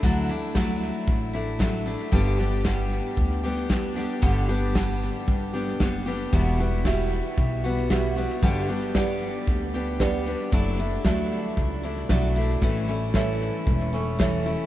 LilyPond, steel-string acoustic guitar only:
\new Staff \with { instrumentName = "Steel-string acoustic guitar" } { \time 4/4 \key d \major \tempo 4 = 114 <d fis a d' e'>8 <a d' e'>8 <fis a d' e'>4. <a d' e'>8 <fis a d' e'>8 <a d' e'>8 | <g, d g b d' g'>8 <g b d' g'>8 <g b d' g'>4. <g b d' g'>8 <g b d' g'>8 <g b d' g'>8 | <g, d g b d' g'>8 <g b d' g'>8 <g b d' g'>4. <g b d' g'>8 <g b d' g'>8 <g b d' g'>8 | <e, b, g b e' fis'>8 <g b e' fis'>8 <g b e' fis'>4. <g b e' fis'>8 <g b e' fis'>8 <g b e' fis'>8 |
<g, d g b d' g'>8 <g b d' g'>8 <g b d' g'>4. <g b d' g'>8 <g b d' g'>8 <g b d' g'>8 | <fis a d' e'>8 <a d' e'>8 <fis a d' e'>4. <a d' e'>8 <fis a d' e'>8 <a d' e'>8 | <a, e a cis' e'>8 <a cis' e'>8 <e a cis' e'>4. <a cis' e'>8 <e a cis' e'>8 <a cis' e'>8 | }